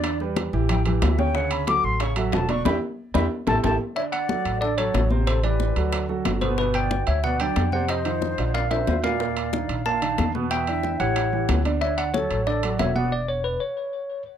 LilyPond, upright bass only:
\new Staff \with { instrumentName = "Upright bass" } { \clef bass \time 4/4 \key d \major \tempo 4 = 184 e,4. a,,4. d,4~ | d,4. a,,4. e,,4 | e,8 r4 e,8 r8 a,,8 a,,8 r8 | r4. a,,4. a,,4~ |
a,,4. d,4. g,,4~ | g,,4. d,4. f,4~ | f,4. bes,,4. ees,4~ | ees,4. bes,,4. e,4~ |
e,4. a,,4. d,4~ | d,4. a,,4. e,,4~ | e,,4. r2 r8 | }